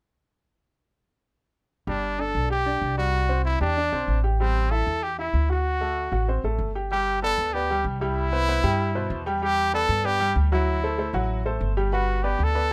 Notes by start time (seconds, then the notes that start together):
1.87 G1 G3 D4 G4
2.19 D4 A4 D5
2.35 B1
2.50 G4 G5
2.66 D4 D5
2.81 C2
2.98 G3 F#4 D5
3.29 C4 C5
3.45 E4
3.61 E2 D4 G4 G5
3.77 D4 D5
3.92 B1 C4 C5
4.08 A1
4.24 G4 G5
4.40 G3 C4 G4
4.71 E4 A4 E5
4.87 E2
5.03 G4 G5
5.19 E4 E5
5.34 D2
5.49 F#4 F#5
5.81 A3 A4
6.12 A1 F#4 F#5
6.28 C4 C5
6.44 A1 A3 A4
6.59 G1
6.75 G4 G5
6.91 G3 G4 G5
7.23 B3 A4 B4 D5
7.38 D2
7.54 B3 G4 B4 D5
7.70 G3 G4 G5
7.84 C2
8.01 G3 E4 G4 G5
8.32 B3 B4 C5
8.48 B3 B4 C5
8.64 G2 G3 G4 G5
8.95 B2 B4 C5
9.10 E2
9.26 G3 G4 G5
9.42 G3 G4 G5
9.73 B3 A4 B4 D5
9.89 G2
10.04 B3 G4 B4 D5
10.20 G3 G4 G5
10.36 D2
10.52 F#3 E4 F#4 F#5
10.84 A3 A4 C5
10.98 A3 A4 C5
11.13 A1 F#3 F#4 F#5
11.46 A3 A4 C5
11.61 G1
11.77 G3 G4 G5
11.92 G3 F#4 B4 F#5
12.23 B3 G4 B4 D5
12.39 D2
12.44 A4
12.55 B3 B4 D5